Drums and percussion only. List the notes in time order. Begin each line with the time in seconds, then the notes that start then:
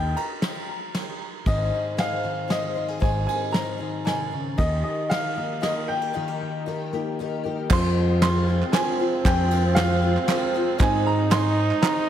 0.17 ride
0.42 snare, ride
0.95 snare, ride
1.46 kick, ride
1.98 snare, ride
2.50 snare, ride
3.02 kick, ride
3.29 ride
3.54 snare, ride
4.07 snare, ride
4.58 kick, ride
5.11 snare, ride
5.63 snare, ride
7.70 kick, clap, crash
8.22 snare, clap, ride
8.62 clap
8.73 snare, clap, ride
9.25 kick, clap, ride
9.51 ride
9.76 snare, clap, ride
10.17 clap
10.28 snare, clap, ride
10.80 kick, clap, ride
11.31 snare, clap, ride
11.71 clap
11.82 snare, clap, ride